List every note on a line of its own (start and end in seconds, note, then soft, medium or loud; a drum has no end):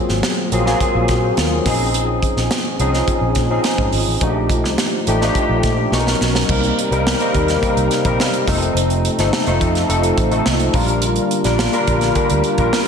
0.00 0.24 F#3 medium
0.00 0.25 A#3 medium
0.00 0.25 C4 medium
0.00 0.25 F4 medium
0.00 0.28 G#4 medium
0.09 0.20 G#1 medium
0.09 snare soft
0.23 snare loud
0.23 closed hi-hat medium
0.52 0.73 A#1 medium
0.52 0.61 F#3 medium
0.52 0.61 A#3 medium
0.52 0.62 C4 medium
0.52 0.62 F4 medium
0.52 0.62 G#4 loud
0.52 closed hi-hat medium
0.66 1.43 F#3 medium
0.66 1.43 A#3 medium
0.66 1.44 C4 medium
0.66 1.09 F4 medium
0.66 1.09 G#4 medium
0.66 snare soft
0.81 kick medium
0.81 closed hi-hat medium
0.95 1.05 A#1 medium
1.08 1.30 A#2 medium
1.08 kick medium
1.08 snare soft
1.08 closed hi-hat medium
1.24 1.37 F#4 soft
1.24 1.37 C5 medium
1.37 1.58 D#2 medium
1.37 1.51 F4 medium
1.37 1.51 A#4 medium
1.37 snare loud
1.37 closed hi-hat medium
1.52 1.66 D#4 soft
1.52 1.66 G#4 medium
1.65 2.19 A#1 medium
1.65 1.72 E3 medium
1.65 2.57 C4 medium
1.65 2.57 C#4 medium
1.65 2.57 D#4 medium
1.65 2.57 G#4 loud
1.65 kick medium
1.65 snare soft
1.65 open hi-hat medium
1.72 2.60 F3 medium
1.94 closed hi-hat medium
2.23 kick medium
2.23 closed hi-hat medium
2.37 2.47 A#1 medium
2.37 snare soft
2.51 snare loud
2.51 closed hi-hat medium
2.79 3.01 C2 medium
2.79 3.28 F3 medium
2.79 3.28 C4 medium
2.79 3.28 C#4 medium
2.79 3.28 D#4 medium
2.79 3.28 G#4 medium
2.79 closed hi-hat medium
2.94 snare soft
3.08 kick medium
3.08 closed hi-hat medium
3.21 3.32 A#1 medium
3.35 3.57 A#2 medium
3.35 kick medium
3.35 snare soft
3.35 closed hi-hat medium
3.50 3.98 F3 medium
3.50 3.99 C4 medium
3.50 3.99 C#4 medium
3.50 3.99 D#4 medium
3.50 3.99 G#4 medium
3.64 snare medium
3.64 closed hi-hat medium
3.78 3.89 G#2 medium
3.78 kick medium
3.92 4.03 G#1 medium
3.92 open hi-hat medium
4.07 4.17 A1 medium
4.21 4.63 A#1 medium
4.21 4.79 F3 medium
4.21 4.80 A3 medium
4.21 4.80 D4 medium
4.21 4.80 D#4 medium
4.21 4.28 F#4 medium
4.21 kick loud
4.21 closed hi-hat medium
4.29 4.83 G4 medium
4.50 kick medium
4.50 closed hi-hat medium
4.63 4.74 C2 medium
4.63 snare soft
4.78 snare medium
4.78 closed hi-hat medium
5.07 5.28 A1 medium
5.07 5.16 F3 medium
5.07 5.17 A3 medium
5.07 5.17 D4 medium
5.07 5.17 D#4 medium
5.07 5.17 G4 medium
5.07 closed hi-hat medium
5.21 5.92 F3 medium
5.21 5.92 A3 medium
5.21 5.92 D4 medium
5.21 5.92 D#4 medium
5.21 5.28 F4 medium
5.21 snare soft
5.29 5.96 G4 medium
5.35 kick medium
5.35 closed hi-hat medium
5.49 5.60 A#1 medium
5.63 5.85 A#2 medium
5.63 kick medium
5.63 snare soft
5.63 closed hi-hat medium
5.92 6.13 B1 medium
5.92 6.37 F#3 medium
5.92 6.38 B3 medium
5.92 6.38 C#4 medium
5.92 6.38 D#4 medium
5.92 5.99 A4 medium
5.92 6.45 C#6 medium
5.92 snare soft
6.00 6.41 A#4 medium
6.07 snare medium
6.21 6.42 B1 medium
6.21 snare medium
6.35 snare medium
6.48 6.70 C2 medium
6.48 10.70 C3 medium
6.48 8.46 G3 medium
6.48 6.78 G3 medium
6.48 8.46 A#3 medium
6.48 6.78 A#3 medium
6.48 6.79 C4 medium
6.48 8.46 D#4 medium
6.48 6.79 D#4 medium
6.48 6.79 A#4 medium
6.48 kick loud
6.48 crash medium
6.64 closed hi-hat soft
6.79 closed hi-hat medium
6.91 7.13 C2 loud
6.91 7.11 G3 medium
6.91 7.11 A#3 medium
6.91 7.11 C4 medium
6.91 7.11 D#4 medium
6.91 7.11 A#4 medium
6.91 closed hi-hat soft
7.07 snare loud
7.20 7.49 G3 medium
7.20 7.49 A#3 medium
7.20 7.49 C4 medium
7.20 7.49 D#4 medium
7.20 7.50 A#4 medium
7.20 closed hi-hat soft
7.34 7.55 D#2 medium
7.34 kick medium
7.34 closed hi-hat medium
7.48 snare soft
7.48 closed hi-hat soft
7.62 7.91 G3 medium
7.62 7.91 A#3 medium
7.62 7.92 C4 medium
7.62 7.91 D#4 medium
7.62 7.92 A#4 medium
7.62 kick medium
7.62 closed hi-hat medium
7.77 7.87 C2 medium
7.77 closed hi-hat medium
7.91 snare soft
7.91 closed hi-hat medium
8.04 8.15 A#1 medium
8.04 8.34 G3 medium
8.04 8.34 A#3 medium
8.04 8.34 C4 medium
8.04 8.34 D#4 medium
8.04 8.34 A#4 medium
8.04 kick medium
8.04 closed hi-hat soft
8.20 snare loud
8.33 closed hi-hat soft
8.47 8.69 F1 medium
8.47 9.04 F3 medium
8.47 10.73 F3 medium
8.47 9.04 A3 medium
8.47 10.73 A3 medium
8.47 9.05 C4 medium
8.47 9.05 D#4 medium
8.47 10.73 D#4 medium
8.47 9.05 A4 medium
8.47 kick medium
8.47 snare soft
8.47 open hi-hat medium
8.62 closed hi-hat soft
8.75 9.07 F1 loud
8.75 closed hi-hat medium
8.90 closed hi-hat medium
9.05 closed hi-hat medium
9.18 9.29 G1 medium
9.18 9.38 F3 medium
9.18 9.38 A3 medium
9.18 9.38 C4 medium
9.18 9.38 D#4 medium
9.18 9.39 A4 medium
9.18 snare soft
9.18 closed hi-hat medium
9.33 snare loud
9.46 9.58 F1 medium
9.46 9.76 F3 medium
9.46 9.76 A3 medium
9.46 9.76 C4 medium
9.46 9.76 D#4 medium
9.46 9.76 A4 loud
9.46 closed hi-hat soft
9.61 9.82 F2 medium
9.61 kick medium
9.61 closed hi-hat medium
9.75 snare soft
9.75 closed hi-hat soft
9.89 10.10 F1 medium
9.89 10.18 F3 medium
9.89 10.18 A3 medium
9.89 10.18 C4 medium
9.89 10.18 D#4 medium
9.89 10.19 A4 medium
9.89 closed hi-hat medium
10.03 closed hi-hat medium
10.18 10.39 A1 medium
10.18 kick medium
10.18 closed hi-hat medium
10.31 10.61 F3 medium
10.31 10.61 A3 medium
10.31 10.61 C4 medium
10.31 10.61 D#4 medium
10.31 10.61 A4 medium
10.31 closed hi-hat soft
10.46 10.68 C2 medium
10.46 snare medium
10.60 closed hi-hat soft
10.74 11.17 A#1 medium
10.74 12.88 D3 medium
10.74 12.88 G3 medium
10.74 11.31 G3 medium
10.74 11.31 A#3 medium
10.74 12.88 A#3 medium
10.74 11.31 D4 medium
10.74 12.88 F4 medium
10.74 11.31 F4 medium
10.74 11.31 A#4 loud
10.74 kick medium
10.74 open hi-hat medium
10.88 closed hi-hat soft
11.02 closed hi-hat medium
11.16 closed hi-hat soft
11.31 closed hi-hat medium
11.44 11.66 A#1 medium
11.44 11.64 G3 medium
11.44 11.64 A#3 medium
11.44 11.65 D4 medium
11.44 11.65 F4 medium
11.44 11.65 A#4 medium
11.44 snare soft
11.44 closed hi-hat medium
11.59 snare loud
11.73 12.02 G3 medium
11.73 12.02 A#3 medium
11.73 12.03 D4 medium
11.73 12.03 F4 medium
11.73 12.03 A#4 medium
11.73 closed hi-hat medium
11.87 12.09 A#1 medium
11.87 kick medium
11.87 closed hi-hat medium
12.01 snare soft
12.01 closed hi-hat soft
12.15 12.45 G3 medium
12.15 12.45 A#3 medium
12.15 12.45 D4 medium
12.15 12.45 F4 medium
12.15 12.45 A#4 medium
12.15 kick medium
12.15 closed hi-hat medium
12.30 12.41 D2 medium
12.30 closed hi-hat medium
12.44 closed hi-hat medium
12.58 12.69 A#1 medium
12.58 12.88 G3 medium
12.58 12.88 A#3 medium
12.58 12.88 D4 medium
12.58 12.88 F4 medium
12.58 12.88 A#4 medium
12.58 kick medium
12.58 closed hi-hat soft
12.73 snare loud